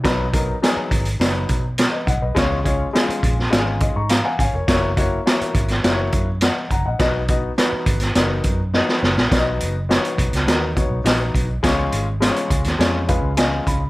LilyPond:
<<
  \new Staff \with { instrumentName = "Upright piano" } { \time 4/4 \key b \major \tempo 4 = 103 << { r2. r16 <b' dis''>16 <dis'' fis''>16 <b' dis''>16~ | <b' dis''>16 r2 r16 dis''16 <ais'' cis'''>16 <eis'' ais''>16 <eis'' fis'' gis''>16 <cis'' eis'' gis''>16 <ais' cis''>16~ | <ais' cis''>16 r2 r8. <dis'' fis''>8 <fis'' ais''>16 <dis'' fis''>16~ | <dis'' fis''>16 r2. r8. |
r1 | r2 r8 eis''8 gis''8 b''8 | } \\ { <fis b dis' b'>8 <fis b dis' ais'>8 <fis b dis' gis'>8. r16 <fis b dis' b'>8. r4 r16 | <gis cis' eis' cis''>8 <gis cis' eis' cis''>8 <gis cis' e' eis' gis'>8. r16 <gis cis' eis' fis' gis'>8. r4 r16 | <ais e' fis' cis''>8 <ais e' fis' cis''>8 <ais e' fis' cis''>8. r16 <ais e' fis' c'' cis''>8. r4 r16 | <b dis' fis' dis''>8 <b dis' fis' dis''>8 <b dis' fis' b'>8. r16 <b dis' fis' ais'>8. r16 <b dis' fis' dis''>8. r16 |
<b dis' fis' d'' dis''>8. r16 <b dis' fis' cis''>8. r16 <b dis' fis' ais'>8 <b dis' fis' cis''>8 <b dis' fis' dis''>8. r16 | <gis cis' eis' cis''>8. r16 <gis cis' eis' c'' cis''>8. r16 <gis cis' eis' cis''>8 <gis cis' eis' b'>8 <gis cis' eis' dis''>8. r16 | } >> }
  \new Staff \with { instrumentName = "Fingered electric bass" } { \clef bass \time 4/4 \key b \major b,,4 r8 gis,,8 fis,,8 b,8. r16 b,,16 b,,16 | cis,4 r8 ais,,8 gis,,8. gis,8 r16 gis,,16 eis,,16 | fis,,4 r8 gis,,8 fis,,8 fis,8. r16 fis,,16 ais,,16 | b,,4 r8 gis,,8 fis,,8 fis,8. r16 fis,,16 ais,,16 |
b,,8 fis,,8. r16 b,,16 cis,16 dis,8. b,,16 ais,,8 b,,8 | cis,8 gis,,8. r16 cis,16 dis,16 eis,8. cis,8. cis,8 | }
  \new DrumStaff \with { instrumentName = "Drums" } \drummode { \time 4/4 <hh bd sn>8 <hh bd>8 <hh sn>8 <hh bd>16 hh16 <hh sn>8 <hh bd>8 <hh sn>8 <hh bd>8 | <hh bd sn>8 <hh bd>8 <hh sn>16 hh16 <hh bd>16 sn16 <hh sn>8 <hh bd>8 <hh sn>8 <hh bd>8 | <hh bd sn>8 <hh bd>8 <hh sn>16 hh16 <hh bd>16 <hh sn>16 <hh sn>8 <hh bd>8 <hh sn>8 <hh bd>8 | <hh bd sn>8 <hh bd>8 <hh sn>8 <hh bd>16 <hh sn>16 <hh sn>8 <hh bd>8 sn16 sn16 sn16 sn16 |
<hh bd sn>8 hh8 <hh sn>16 hh16 <hh bd>16 <hh sn>16 <hh sn>8 <hh bd>8 <hh sn>8 <hh bd>8 | <hh bd sn>8 hh8 <hh sn>16 hh16 <hh bd>16 <hh sn>16 <hh sn>8 <hh bd>8 <hh sn>8 <hh bd>8 | }
>>